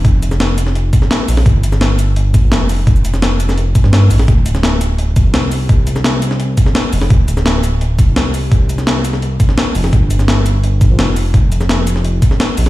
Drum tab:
HH |x-x-x-x-x-x-x-o-|x-x-x-x-x-x-x-o-|x-x-x-x-x-x-x-o-|x-x-x-x-x-x-x-o-|
SH |--xx--x---x---x-|--xx--x---x---x-|-xxx--xx--x---x-|--xx--x---x---x-|
SD |---oo--o---oo--o|---oo-------o---|---oo--o---oo--o|---oo-------o---|
BD |o---------o-----|o---------o-----|o---------o-----|o---------o-----|

HH |x-x-x-x-x-x-x-o-|x-x-x-x-x-x-x-o-|x-x-x-x-x-x-x-o-|x-x-x-x-x-x-x-o-|
SH |--xx--x---x---x-|--xx--x---x---x-|--xx--x---x---x-|--xx--x---x---x-|
SD |---oo--o---oo--o|---oo-------o---|---oo--o---oo--o|---oo-------o---|
BD |o---------o-----|o---------o-----|o---------o-----|o---------o-----|

HH |x-x-x-x-x-x-x-o-|
SH |--xx--x---x---x-|
SD |---oo--o---oo--o|
BD |o---------o-----|